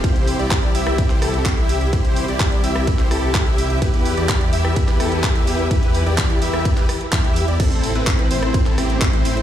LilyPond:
<<
  \new Staff \with { instrumentName = "Supersaw synth" } { \time 4/4 \key c \major \tempo 4 = 127 <e' g' c''>8. <e' g' d''>8. <e' g' e''>8. <e' g' c''>16 <e' g' a'>8. <e' g' e''>8. | <e' g' c''>8. <e' g' d''>8. <e' g' e''>8. <e' g' c''>16 <e' g' a'>8. <e' g' e''>8. | <e' g' b'>8. <e' g' d''>8. <e' g' e''>8. <e' g' b'>16 <e' g' a'>8. <e' g' e''>8. | <e' g' b'>8. <e' g' d''>8. <e' g' e''>8. <e' g' b'>16 r8 <e' g' e''>8. <e' g' d''>16 |
<c' e' a'>8. <c' e' b'>8. <c' e' c''>8. <c' e' a'>16 <c' e' g'>8. <c' e' c''>8. | }
  \new Staff \with { instrumentName = "String section" } { \time 4/4 \key c \major << { <c g'>1~ | <c g'>1 | <e b'>1~ | <e b'>1 |
a1 | } \\ { <c' e'>1~ | <c' e'>1~ | <c' e'>1~ | <c' e'>1 |
c'1 | } >> }
  \new Staff \with { instrumentName = "Detuned saw bass" } { \clef bass \time 4/4 \key c \major c,8. c,8. c,8. c,16 c,8. c,8. | c,8. c,8. c,8. c,16 c,8. c,8. | e,8. e,8. e,8. e,16 e,8. e,8. | e,8. e,8. e,8. e,16 r8 e,8. e,16 |
a,,8. a,,8. a,,8. a,,16 a,,8. a,,8. | }
  \new DrumStaff \with { instrumentName = "Drums" } \drummode { \time 4/4 <hh bd cymr>16 hh16 hho16 hh16 <hc hh bd cymr>16 hh16 hho16 <hh ss>16 <hh bd cymr>16 <hc hh>16 <hho ss>16 hh16 <hc hh bd cymr>16 hh16 hho16 hh16 | <hh bd cymr>16 hh16 hho16 hh16 <hc hh bd cymr>16 hh16 hho16 <hh ss>16 <hh bd cymr>16 <hc hh>16 <hho ss>16 hh16 <hc hh bd cymr>16 hh16 hho16 hh16 | <hh bd cymr>16 hh16 hho16 hh16 <hc hh bd cymr>16 hh16 hho16 <hh ss>16 <hh bd cymr>16 <hc hh>16 <hho ss>16 hh16 <hc hh bd cymr>16 hh16 hho16 hh16 | <hh bd cymr>16 hh16 hho16 hh16 <hc hh bd cymr>16 hh16 hho16 <hh ss>16 <hh bd cymr>16 <hc hh>16 <hho ss>16 hh16 <hc hh bd cymr>16 hh16 hho16 hh16 |
<cymc hh bd cymr>16 hh16 hho16 hh16 <hc hh bd cymr>16 hh16 hho16 <hh ss>16 <hh bd cymr>16 <hc hh>16 <hho ss>16 hh16 <hc hh bd cymr>16 hh16 hho16 hh16 | }
>>